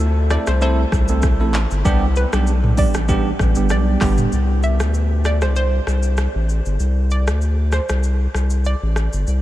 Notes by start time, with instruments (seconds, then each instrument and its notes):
Already playing: sub bass D2
0.30 tine electric piano A3 C4 E4 A4, synth pluck D5, cross-stick, shaker
0.47 sub bass C2, synth pluck C5, cross-stick, shaker
0.61 tine electric piano A3 C4 E4 A4, synth pluck C5, shaker
0.92 sub bass C2, kick, cross-stick, shaker
1.08 tine electric piano A3 C4 E4 A4, shaker
1.22 kick, cross-stick, shaker
1.40 sub bass A1, tine electric piano A3 C4 E4 A4
1.54 clap, shaker
1.71 sub bass G1, shaker
1.85 sub bass C2, tine electric piano G3 B3 D4 G4, kick, shaker
2.16 synth pluck B4, shaker
2.33 sub bass B1, tine electric piano G3 B3 D4 G4, cross-stick, shaker
2.47 shaker
2.64 mid tom
2.77 tine electric piano G3 B3 D4 G4, synth pluck D5, kick, open hi-hat, shaker
2.94 sub bass A1, cross-stick, shaker
3.08 tine electric piano G3 B3 D4 G4, kick, shaker
3.39 sub bass A1, kick, cross-stick, shaker
3.55 sub bass G1, tine electric piano G3 B3 D4 G4, shaker
3.69 sub bass B1, synth pluck D5, cross-stick, shaker
4.01 sub bass G1, tine electric piano G3 B3 D4 G4, kick, cross-stick, clap, open hi-hat, shaker
4.18 mid tom, shaker
4.32 sub bass C2, shaker
4.63 synth pluck E5, shaker
4.80 sub bass D2, cross-stick, shaker
4.94 shaker
5.25 synth pluck D5, cross-stick, shaker
5.41 sub bass C2, synth pluck C5, cross-stick, shaker
5.56 synth pluck C5, shaker
5.87 sub bass C2, cross-stick, shaker
6.03 shaker
6.17 cross-stick, shaker
6.35 sub bass A1
6.49 shaker
6.66 sub bass G1, shaker
6.80 sub bass C2, shaker
7.10 synth pluck D5, shaker
7.27 sub bass D2, cross-stick, shaker
7.41 shaker
7.72 synth pluck C5, cross-stick, shaker
7.89 sub bass C2, cross-stick, shaker
8.03 shaker
8.34 sub bass C2, cross-stick, shaker
8.50 shaker
8.65 synth pluck D5, shaker
8.82 sub bass A1
8.96 cross-stick, shaker
9.13 sub bass G1, shaker
9.27 sub bass C2, shaker